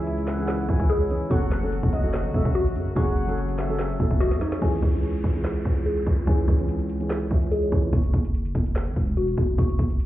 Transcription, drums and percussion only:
0.07 closed hi-hat medium
0.18 closed hi-hat medium
0.27 snare medium
0.27 clap medium
0.27 open hi-hat medium
0.38 closed hi-hat medium
0.48 snare loud
0.48 clap medium
0.48 closed hi-hat medium
0.69 kick medium
0.80 kick medium
0.80 closed hi-hat medium
0.89 closed hi-hat medium
1.00 closed hi-hat medium
1.10 closed hi-hat medium
1.31 kick loud
1.31 closed hi-hat loud
1.42 closed hi-hat medium
1.51 snare medium
1.51 clap medium
1.51 closed hi-hat medium
1.62 closed hi-hat medium
1.72 closed hi-hat medium
1.83 kick loud
1.83 closed hi-hat medium
1.93 closed hi-hat medium
2.04 closed hi-hat medium
2.13 snare loud
2.13 clap medium
2.13 closed hi-hat medium
2.34 kick medium
2.45 kick loud
2.45 closed hi-hat soft
2.55 closed hi-hat medium
2.66 closed hi-hat medium
2.76 closed hi-hat medium
2.96 kick loud
2.96 closed hi-hat loud
3.07 closed hi-hat medium
3.17 closed hi-hat medium
3.28 closed hi-hat medium
3.38 closed hi-hat medium
3.49 closed hi-hat medium
3.58 snare medium
3.58 clap medium
3.58 open hi-hat medium
3.69 closed hi-hat medium
3.79 snare loud
3.79 clap medium
3.79 closed hi-hat medium
4.00 kick medium
4.11 kick medium
4.11 closed hi-hat medium
4.20 snare medium
4.20 closed hi-hat medium
4.31 snare medium
4.31 closed hi-hat medium
4.41 snare loud
4.41 closed hi-hat medium
4.52 snare loud
4.52 closed hi-hat medium
4.62 kick loud
4.62 closed hi-hat medium
4.73 closed hi-hat medium
4.82 kick medium
4.82 closed hi-hat medium
4.93 closed hi-hat medium
5.03 closed hi-hat medium
5.14 closed hi-hat medium
5.24 kick medium
5.24 closed hi-hat medium
5.35 closed hi-hat medium
5.44 snare loud
5.44 clap medium
5.44 closed hi-hat medium
5.65 kick medium
5.76 closed hi-hat soft
5.86 closed hi-hat medium
5.97 closed hi-hat medium
6.07 kick loud
6.07 closed hi-hat medium
6.27 kick loud
6.27 closed hi-hat loud
6.38 closed hi-hat medium
6.48 kick medium
6.48 closed hi-hat medium
6.59 closed hi-hat medium
6.69 closed hi-hat medium
6.80 closed hi-hat medium
6.89 closed hi-hat medium
7.00 closed hi-hat medium
7.10 snare loud
7.10 clap medium
7.10 closed hi-hat medium
7.31 kick medium
7.42 closed hi-hat soft
7.51 closed hi-hat medium
7.62 closed hi-hat medium
7.72 kick loud
7.72 closed hi-hat medium
7.93 kick loud
7.93 closed hi-hat loud
8.04 closed hi-hat medium
8.14 kick medium
8.14 closed hi-hat medium
8.25 closed hi-hat medium
8.34 closed hi-hat medium
8.45 closed hi-hat medium
8.55 kick medium
8.55 closed hi-hat medium
8.66 closed hi-hat medium
8.76 snare loud
8.76 clap medium
8.76 closed hi-hat medium
8.96 kick medium
9.07 closed hi-hat medium
9.17 closed hi-hat medium
9.28 closed hi-hat medium
9.38 kick loud
9.38 closed hi-hat medium
9.58 kick loud
9.58 closed hi-hat loud
9.69 closed hi-hat medium
9.79 kick medium
9.79 closed hi-hat medium
9.90 closed hi-hat medium
10.00 closed hi-hat medium

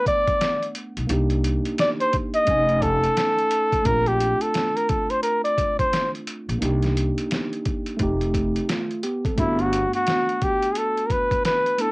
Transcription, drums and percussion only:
0.06 kick medium
0.06 closed hi-hat medium
0.27 kick medium
0.27 closed hi-hat medium
0.41 snare loud
0.41 closed hi-hat medium
0.62 closed hi-hat soft
0.75 closed hi-hat medium
0.97 closed hi-hat medium
1.09 closed hi-hat loud
1.30 closed hi-hat soft
1.44 closed hi-hat medium
1.65 closed hi-hat soft
1.78 snare loud
1.78 closed hi-hat medium
2.00 closed hi-hat soft
2.13 kick medium
2.13 closed hi-hat medium
2.34 closed hi-hat soft
2.47 kick medium
2.47 closed hi-hat medium
2.69 closed hi-hat soft
2.82 kick medium
2.82 closed hi-hat medium
3.04 closed hi-hat soft
3.17 snare loud
3.17 closed hi-hat medium
3.39 closed hi-hat soft
3.51 closed hi-hat medium
3.73 kick medium
3.73 closed hi-hat medium
3.85 kick loud
3.85 closed hi-hat loud
4.06 closed hi-hat soft
4.21 closed hi-hat medium
4.41 closed hi-hat medium
4.54 snare medium
4.54 closed hi-hat medium
4.77 closed hi-hat soft
4.89 kick loud
4.89 closed hi-hat medium
5.10 closed hi-hat soft
5.23 closed hi-hat medium
5.45 closed hi-hat soft
5.58 kick medium
5.58 closed hi-hat medium
5.79 kick medium
5.79 closed hi-hat medium
5.93 snare loud
5.93 closed hi-hat medium
6.15 closed hi-hat soft
6.27 closed hi-hat medium
6.49 closed hi-hat soft
6.62 closed hi-hat loud
6.83 snare soft
6.83 closed hi-hat soft
6.97 closed hi-hat medium
7.18 closed hi-hat medium
7.31 snare loud
7.31 closed hi-hat medium
7.53 closed hi-hat soft
7.65 kick loud
7.65 closed hi-hat medium
7.86 closed hi-hat soft
7.99 kick medium
7.99 closed hi-hat medium
8.21 closed hi-hat soft
8.34 kick medium
8.34 closed hi-hat medium
8.56 closed hi-hat medium
8.69 snare loud
8.69 closed hi-hat medium
8.91 closed hi-hat soft
9.03 closed hi-hat medium
9.25 kick medium
9.25 closed hi-hat medium
9.38 kick loud
9.38 closed hi-hat medium
9.59 closed hi-hat soft
9.73 closed hi-hat medium
9.93 closed hi-hat soft
10.07 snare loud
10.07 closed hi-hat medium
10.29 closed hi-hat soft
10.42 kick medium
10.42 closed hi-hat medium
10.62 closed hi-hat soft
10.75 closed hi-hat medium
10.97 closed hi-hat soft
11.10 kick medium
11.10 closed hi-hat medium
11.31 kick medium
11.31 closed hi-hat soft
11.45 snare loud
11.45 closed hi-hat medium
11.66 closed hi-hat soft
11.78 closed hi-hat medium

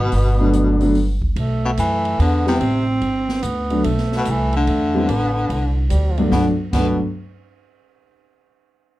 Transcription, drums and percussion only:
0.12 open hi-hat medium
0.53 closed hi-hat soft
0.80 open hi-hat soft
0.95 open hi-hat soft
1.22 kick medium
1.36 ride medium
1.77 hi-hat pedal medium
1.77 ride medium
2.05 ride soft
2.20 ride medium
2.47 snare soft
2.61 ride medium
3.01 ride soft
3.29 snare soft
3.43 hi-hat pedal soft
3.43 ride medium
3.70 ride soft
3.84 ride medium
3.98 snare soft
4.12 snare soft
4.25 hi-hat pedal medium
4.25 ride medium
4.53 ride soft
4.67 ride soft
5.09 ride medium
5.50 ride soft
5.90 hi-hat pedal soft
5.90 ride medium
6.18 ride soft
6.32 kick medium
6.32 snare medium
6.73 kick medium
6.73 snare medium
6.73 crash medium

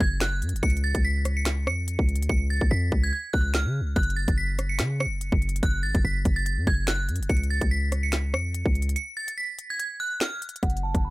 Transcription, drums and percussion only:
0.00 kick loud
0.20 finger snap medium
0.20 snare loud
0.20 closed hi-hat medium
0.42 closed hi-hat medium
0.49 closed hi-hat medium
0.56 closed hi-hat medium
0.63 kick loud
0.63 closed hi-hat medium
0.70 closed hi-hat medium
0.77 closed hi-hat medium
0.95 kick medium
0.95 closed hi-hat medium
1.25 cross-stick medium
1.25 closed hi-hat medium
1.45 finger snap medium
1.45 snare loud
1.45 closed hi-hat medium
1.67 cross-stick loud
1.88 closed hi-hat medium
1.99 kick medium
2.09 closed hi-hat soft
2.16 closed hi-hat medium
2.22 closed hi-hat medium
2.29 kick loud
2.61 kick loud
2.92 kick loud
3.34 kick loud
3.54 finger snap medium
3.54 snare loud
3.96 kick loud
3.96 closed hi-hat medium
4.03 closed hi-hat medium
4.10 closed hi-hat medium
4.28 kick medium
4.28 closed hi-hat medium
4.59 cross-stick medium
4.59 closed hi-hat medium
4.79 finger snap medium
4.79 snare loud
4.79 closed hi-hat medium
5.00 cross-stick loud
5.21 closed hi-hat medium
5.32 kick loud
5.42 closed hi-hat soft
5.49 closed hi-hat medium
5.56 closed hi-hat medium
5.63 kick loud
5.63 closed hi-hat medium
5.95 kick medium
5.95 closed hi-hat medium
6.25 kick medium
6.25 closed hi-hat medium
6.46 closed hi-hat medium
6.67 kick loud
6.87 finger snap medium
6.87 snare loud
6.87 closed hi-hat medium
7.09 closed hi-hat medium
7.16 closed hi-hat medium
7.23 closed hi-hat medium
7.30 kick loud
7.30 closed hi-hat medium
7.37 closed hi-hat medium
7.43 closed hi-hat medium
7.61 kick medium
7.61 closed hi-hat medium
7.92 cross-stick medium
7.92 closed hi-hat medium
8.12 finger snap loud
8.12 snare loud
8.12 closed hi-hat medium
8.34 cross-stick loud
8.54 closed hi-hat medium
8.66 kick medium
8.75 closed hi-hat soft
8.82 closed hi-hat medium
8.89 closed hi-hat medium
8.96 closed hi-hat medium
9.28 closed hi-hat medium
9.59 closed hi-hat medium
9.80 closed hi-hat medium
10.20 finger snap medium
10.20 snare loud
10.20 closed hi-hat medium
10.42 closed hi-hat medium
10.49 closed hi-hat medium
10.56 closed hi-hat medium
10.63 kick loud
10.63 closed hi-hat medium
10.70 closed hi-hat medium
10.77 closed hi-hat medium
10.95 kick medium
10.95 closed hi-hat medium

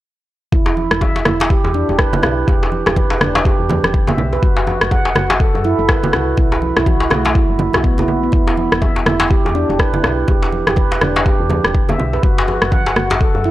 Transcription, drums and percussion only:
0.52 kick loud
0.52 muted conga medium
0.66 djembe slap medium
0.66 djembe tone medium
0.77 high conga medium
0.91 cross-stick medium
1.01 kick loud
1.01 muted conga soft
1.01 djembe tone medium
1.01 high conga medium
1.16 djembe slap medium
1.25 cross-stick medium
1.25 djembe tone medium
1.25 low conga medium
1.40 muted conga medium
1.40 djembe slap loud
1.50 kick loud
1.64 djembe tone medium
1.74 muted conga soft
1.89 djembe tone medium
1.99 kick loud
1.99 cross-stick medium
2.13 muted conga medium
2.13 low conga loud
2.23 cross-stick medium
2.23 djembe tone medium
2.48 kick loud
2.48 muted conga medium
2.48 djembe tone medium
2.63 djembe slap medium
2.72 high conga medium
2.86 cross-stick medium
2.86 djembe tone medium
2.96 kick loud
2.96 muted conga soft
2.96 high conga loud
3.10 djembe slap medium
3.10 djembe tone medium
3.21 cross-stick medium
3.21 low conga medium
3.35 djembe slap loud
3.35 muted conga medium
3.45 kick loud
3.45 djembe tone medium
3.69 muted conga soft
3.69 djembe tone medium
3.69 high conga loud
3.69 low conga medium
3.84 cross-stick medium
3.84 high conga medium
3.94 kick loud
4.07 muted conga medium
4.07 djembe tone medium
4.07 low conga loud
4.18 low conga loud
4.33 djembe tone medium
4.43 kick loud
4.43 muted conga soft
4.57 djembe slap medium
4.67 high conga medium
4.67 djembe tone medium
4.81 cross-stick medium
4.91 kick loud
4.91 muted conga soft
4.91 high conga medium
4.91 djembe tone medium
5.05 djembe slap medium
5.15 cross-stick medium
5.15 low conga medium
5.30 djembe slap loud
5.30 muted conga soft
5.30 djembe tone medium
5.40 kick loud
5.55 djembe tone medium
5.64 muted conga soft
5.89 kick loud
5.89 cross-stick loud
5.89 djembe tone loud
6.03 muted conga medium
6.03 low conga loud
6.13 cross-stick medium
6.13 djembe tone medium
6.37 kick loud
6.37 muted conga soft
6.52 djembe slap medium
6.52 djembe tone medium
6.62 high conga medium
6.77 cross-stick medium
6.77 djembe tone medium
6.86 kick loud
6.86 muted conga soft
6.86 high conga medium
7.00 djembe slap medium
7.11 cross-stick medium
7.11 djembe tone loud
7.11 low conga medium
7.25 muted conga medium
7.25 djembe slap loud
7.35 kick loud
7.35 djembe tone medium
7.59 muted conga soft
7.59 high conga medium
7.59 low conga medium
7.73 cross-stick medium
7.73 high conga medium
7.73 djembe tone loud
7.84 kick loud
7.98 muted conga soft
7.98 djembe tone medium
7.98 low conga medium
8.08 low conga medium
8.32 kick loud
8.32 muted conga soft
8.47 djembe slap medium
8.47 djembe tone medium
8.57 high conga medium
8.72 cross-stick medium
8.82 kick loud
8.82 muted conga soft
8.82 djembe tone medium
8.82 high conga medium
8.96 djembe slap medium
9.06 cross-stick medium
9.06 djembe tone medium
9.06 low conga medium
9.20 djembe slap loud
9.20 muted conga soft
9.30 kick loud
9.46 djembe tone loud
9.55 muted conga soft
9.70 djembe tone medium
9.79 kick loud
9.79 cross-stick medium
9.94 muted conga soft
9.94 low conga medium
10.04 cross-stick medium
10.04 djembe tone medium
10.28 kick loud
10.28 muted conga soft
10.28 djembe tone medium
10.43 djembe slap medium
10.52 high conga medium
10.67 cross-stick medium
10.67 djembe tone medium
10.76 kick loud
10.76 muted conga soft
10.76 high conga medium
10.91 djembe slap medium
10.91 djembe tone medium
11.01 cross-stick medium
11.01 low conga medium
11.16 muted conga soft
11.16 djembe slap medium
11.26 kick loud
11.26 djembe tone medium
11.50 muted conga soft
11.50 djembe tone medium
11.50 high conga medium
11.50 low conga medium
11.64 cross-stick medium
11.64 high conga medium
11.75 kick loud
11.89 muted conga soft
11.89 djembe tone medium
11.89 low conga medium
12.00 low conga medium
12.13 djembe tone medium
12.23 kick loud
12.23 muted conga medium
12.38 djembe slap medium
12.48 high conga medium
12.48 djembe tone medium
12.62 cross-stick medium
12.72 kick loud
12.72 muted conga soft
12.72 djembe tone medium
12.72 high conga medium
12.86 djembe slap medium
12.96 cross-stick medium
12.96 low conga medium
13.10 muted conga medium
13.10 djembe slap loud
13.10 djembe tone medium
13.21 kick loud
13.35 djembe tone medium
13.44 muted conga soft

